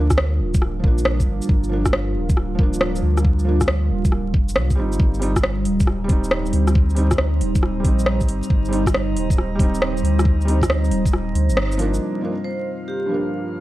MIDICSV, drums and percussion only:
0, 0, Header, 1, 2, 480
1, 0, Start_track
1, 0, Key_signature, -2, "minor"
1, 0, Tempo, 437956
1, 1639, Time_signature, 4, 2, 24, 8
1, 14909, End_track
2, 0, Start_track
2, 0, Title_t, "Drums"
2, 113, Note_on_c, 9, 37, 63
2, 113, Note_on_c, 9, 82, 55
2, 118, Note_on_c, 9, 36, 60
2, 194, Note_off_c, 9, 37, 0
2, 194, Note_on_c, 9, 37, 102
2, 223, Note_off_c, 9, 82, 0
2, 228, Note_off_c, 9, 36, 0
2, 303, Note_off_c, 9, 37, 0
2, 593, Note_on_c, 9, 82, 60
2, 597, Note_on_c, 9, 36, 102
2, 677, Note_on_c, 9, 37, 54
2, 703, Note_off_c, 9, 82, 0
2, 706, Note_off_c, 9, 36, 0
2, 786, Note_off_c, 9, 37, 0
2, 917, Note_on_c, 9, 36, 107
2, 1027, Note_off_c, 9, 36, 0
2, 1077, Note_on_c, 9, 82, 56
2, 1153, Note_on_c, 9, 37, 109
2, 1187, Note_off_c, 9, 82, 0
2, 1263, Note_off_c, 9, 37, 0
2, 1316, Note_on_c, 9, 36, 62
2, 1316, Note_on_c, 9, 82, 45
2, 1425, Note_off_c, 9, 36, 0
2, 1426, Note_off_c, 9, 82, 0
2, 1554, Note_on_c, 9, 82, 55
2, 1634, Note_on_c, 9, 36, 121
2, 1664, Note_off_c, 9, 82, 0
2, 1744, Note_off_c, 9, 36, 0
2, 1795, Note_on_c, 9, 82, 28
2, 1905, Note_off_c, 9, 82, 0
2, 2033, Note_on_c, 9, 36, 63
2, 2033, Note_on_c, 9, 37, 65
2, 2033, Note_on_c, 9, 82, 57
2, 2116, Note_off_c, 9, 37, 0
2, 2116, Note_on_c, 9, 37, 102
2, 2143, Note_off_c, 9, 36, 0
2, 2143, Note_off_c, 9, 82, 0
2, 2225, Note_off_c, 9, 37, 0
2, 2515, Note_on_c, 9, 36, 107
2, 2515, Note_on_c, 9, 82, 55
2, 2597, Note_on_c, 9, 37, 50
2, 2624, Note_off_c, 9, 36, 0
2, 2625, Note_off_c, 9, 82, 0
2, 2707, Note_off_c, 9, 37, 0
2, 2835, Note_on_c, 9, 36, 109
2, 2945, Note_off_c, 9, 36, 0
2, 2997, Note_on_c, 9, 82, 57
2, 3077, Note_on_c, 9, 37, 109
2, 3106, Note_off_c, 9, 82, 0
2, 3187, Note_off_c, 9, 37, 0
2, 3240, Note_on_c, 9, 82, 44
2, 3350, Note_off_c, 9, 82, 0
2, 3479, Note_on_c, 9, 37, 57
2, 3479, Note_on_c, 9, 82, 57
2, 3557, Note_on_c, 9, 36, 113
2, 3589, Note_off_c, 9, 37, 0
2, 3589, Note_off_c, 9, 82, 0
2, 3667, Note_off_c, 9, 36, 0
2, 3717, Note_on_c, 9, 82, 28
2, 3827, Note_off_c, 9, 82, 0
2, 3955, Note_on_c, 9, 36, 59
2, 3955, Note_on_c, 9, 37, 62
2, 3955, Note_on_c, 9, 82, 56
2, 4032, Note_off_c, 9, 37, 0
2, 4032, Note_on_c, 9, 37, 98
2, 4065, Note_off_c, 9, 36, 0
2, 4065, Note_off_c, 9, 82, 0
2, 4141, Note_off_c, 9, 37, 0
2, 4436, Note_on_c, 9, 36, 103
2, 4439, Note_on_c, 9, 82, 56
2, 4516, Note_on_c, 9, 37, 47
2, 4546, Note_off_c, 9, 36, 0
2, 4548, Note_off_c, 9, 82, 0
2, 4625, Note_off_c, 9, 37, 0
2, 4755, Note_on_c, 9, 36, 100
2, 4865, Note_off_c, 9, 36, 0
2, 4918, Note_on_c, 9, 82, 57
2, 4994, Note_on_c, 9, 37, 106
2, 5028, Note_off_c, 9, 82, 0
2, 5104, Note_off_c, 9, 37, 0
2, 5155, Note_on_c, 9, 82, 43
2, 5156, Note_on_c, 9, 36, 62
2, 5264, Note_off_c, 9, 82, 0
2, 5266, Note_off_c, 9, 36, 0
2, 5397, Note_on_c, 9, 82, 52
2, 5476, Note_on_c, 9, 36, 117
2, 5506, Note_off_c, 9, 82, 0
2, 5586, Note_off_c, 9, 36, 0
2, 5636, Note_on_c, 9, 82, 28
2, 5719, Note_on_c, 9, 46, 69
2, 5745, Note_off_c, 9, 82, 0
2, 5829, Note_off_c, 9, 46, 0
2, 5876, Note_on_c, 9, 36, 56
2, 5878, Note_on_c, 9, 37, 64
2, 5878, Note_on_c, 9, 82, 50
2, 5957, Note_off_c, 9, 37, 0
2, 5957, Note_on_c, 9, 37, 97
2, 5986, Note_off_c, 9, 36, 0
2, 5988, Note_off_c, 9, 82, 0
2, 6066, Note_off_c, 9, 37, 0
2, 6195, Note_on_c, 9, 46, 71
2, 6305, Note_off_c, 9, 46, 0
2, 6358, Note_on_c, 9, 82, 52
2, 6359, Note_on_c, 9, 36, 99
2, 6436, Note_on_c, 9, 37, 53
2, 6468, Note_off_c, 9, 82, 0
2, 6469, Note_off_c, 9, 36, 0
2, 6546, Note_off_c, 9, 37, 0
2, 6675, Note_on_c, 9, 46, 69
2, 6680, Note_on_c, 9, 36, 105
2, 6785, Note_off_c, 9, 46, 0
2, 6789, Note_off_c, 9, 36, 0
2, 6839, Note_on_c, 9, 82, 53
2, 6917, Note_on_c, 9, 37, 102
2, 6949, Note_off_c, 9, 82, 0
2, 7027, Note_off_c, 9, 37, 0
2, 7078, Note_on_c, 9, 82, 40
2, 7156, Note_on_c, 9, 46, 74
2, 7188, Note_off_c, 9, 82, 0
2, 7265, Note_off_c, 9, 46, 0
2, 7316, Note_on_c, 9, 37, 58
2, 7316, Note_on_c, 9, 82, 52
2, 7401, Note_on_c, 9, 36, 109
2, 7425, Note_off_c, 9, 37, 0
2, 7425, Note_off_c, 9, 82, 0
2, 7511, Note_off_c, 9, 36, 0
2, 7560, Note_on_c, 9, 82, 27
2, 7634, Note_on_c, 9, 46, 71
2, 7670, Note_off_c, 9, 82, 0
2, 7743, Note_off_c, 9, 46, 0
2, 7793, Note_on_c, 9, 37, 66
2, 7793, Note_on_c, 9, 82, 52
2, 7800, Note_on_c, 9, 36, 56
2, 7873, Note_off_c, 9, 37, 0
2, 7873, Note_on_c, 9, 37, 91
2, 7902, Note_off_c, 9, 82, 0
2, 7910, Note_off_c, 9, 36, 0
2, 7982, Note_off_c, 9, 37, 0
2, 8121, Note_on_c, 9, 46, 68
2, 8230, Note_off_c, 9, 46, 0
2, 8278, Note_on_c, 9, 36, 94
2, 8279, Note_on_c, 9, 82, 53
2, 8360, Note_on_c, 9, 37, 54
2, 8388, Note_off_c, 9, 36, 0
2, 8388, Note_off_c, 9, 82, 0
2, 8470, Note_off_c, 9, 37, 0
2, 8598, Note_on_c, 9, 36, 101
2, 8598, Note_on_c, 9, 46, 76
2, 8707, Note_off_c, 9, 46, 0
2, 8708, Note_off_c, 9, 36, 0
2, 8757, Note_on_c, 9, 82, 54
2, 8836, Note_on_c, 9, 37, 102
2, 8867, Note_off_c, 9, 82, 0
2, 8945, Note_off_c, 9, 37, 0
2, 8994, Note_on_c, 9, 82, 42
2, 8998, Note_on_c, 9, 36, 57
2, 9080, Note_on_c, 9, 46, 75
2, 9103, Note_off_c, 9, 82, 0
2, 9107, Note_off_c, 9, 36, 0
2, 9189, Note_off_c, 9, 46, 0
2, 9240, Note_on_c, 9, 82, 52
2, 9318, Note_on_c, 9, 36, 111
2, 9350, Note_off_c, 9, 82, 0
2, 9427, Note_off_c, 9, 36, 0
2, 9482, Note_on_c, 9, 82, 28
2, 9564, Note_on_c, 9, 46, 74
2, 9592, Note_off_c, 9, 82, 0
2, 9674, Note_off_c, 9, 46, 0
2, 9716, Note_on_c, 9, 36, 57
2, 9723, Note_on_c, 9, 37, 69
2, 9723, Note_on_c, 9, 82, 54
2, 9803, Note_off_c, 9, 37, 0
2, 9803, Note_on_c, 9, 37, 95
2, 9825, Note_off_c, 9, 36, 0
2, 9833, Note_off_c, 9, 82, 0
2, 9913, Note_off_c, 9, 37, 0
2, 10045, Note_on_c, 9, 46, 75
2, 10154, Note_off_c, 9, 46, 0
2, 10194, Note_on_c, 9, 36, 94
2, 10203, Note_on_c, 9, 82, 57
2, 10284, Note_on_c, 9, 37, 53
2, 10304, Note_off_c, 9, 36, 0
2, 10313, Note_off_c, 9, 82, 0
2, 10393, Note_off_c, 9, 37, 0
2, 10514, Note_on_c, 9, 36, 105
2, 10520, Note_on_c, 9, 46, 77
2, 10624, Note_off_c, 9, 36, 0
2, 10629, Note_off_c, 9, 46, 0
2, 10682, Note_on_c, 9, 82, 53
2, 10761, Note_on_c, 9, 37, 101
2, 10791, Note_off_c, 9, 82, 0
2, 10870, Note_off_c, 9, 37, 0
2, 10930, Note_on_c, 9, 82, 44
2, 11011, Note_on_c, 9, 46, 78
2, 11039, Note_off_c, 9, 82, 0
2, 11120, Note_off_c, 9, 46, 0
2, 11170, Note_on_c, 9, 37, 66
2, 11170, Note_on_c, 9, 82, 53
2, 11236, Note_on_c, 9, 36, 112
2, 11280, Note_off_c, 9, 37, 0
2, 11280, Note_off_c, 9, 82, 0
2, 11345, Note_off_c, 9, 36, 0
2, 11412, Note_on_c, 9, 82, 31
2, 11489, Note_on_c, 9, 46, 72
2, 11521, Note_off_c, 9, 82, 0
2, 11599, Note_off_c, 9, 46, 0
2, 11635, Note_on_c, 9, 36, 57
2, 11650, Note_on_c, 9, 37, 69
2, 11650, Note_on_c, 9, 82, 58
2, 11725, Note_off_c, 9, 37, 0
2, 11725, Note_on_c, 9, 37, 97
2, 11745, Note_off_c, 9, 36, 0
2, 11760, Note_off_c, 9, 82, 0
2, 11835, Note_off_c, 9, 37, 0
2, 11885, Note_on_c, 9, 82, 31
2, 11961, Note_on_c, 9, 46, 69
2, 11995, Note_off_c, 9, 82, 0
2, 12071, Note_off_c, 9, 46, 0
2, 12115, Note_on_c, 9, 36, 92
2, 12125, Note_on_c, 9, 82, 58
2, 12203, Note_on_c, 9, 37, 57
2, 12225, Note_off_c, 9, 36, 0
2, 12234, Note_off_c, 9, 82, 0
2, 12312, Note_off_c, 9, 37, 0
2, 12443, Note_on_c, 9, 46, 74
2, 12552, Note_off_c, 9, 46, 0
2, 12598, Note_on_c, 9, 82, 56
2, 12679, Note_on_c, 9, 37, 105
2, 12708, Note_off_c, 9, 82, 0
2, 12789, Note_off_c, 9, 37, 0
2, 12844, Note_on_c, 9, 82, 42
2, 12921, Note_on_c, 9, 46, 78
2, 12954, Note_off_c, 9, 82, 0
2, 13031, Note_off_c, 9, 46, 0
2, 13086, Note_on_c, 9, 82, 57
2, 13196, Note_off_c, 9, 82, 0
2, 14909, End_track
0, 0, End_of_file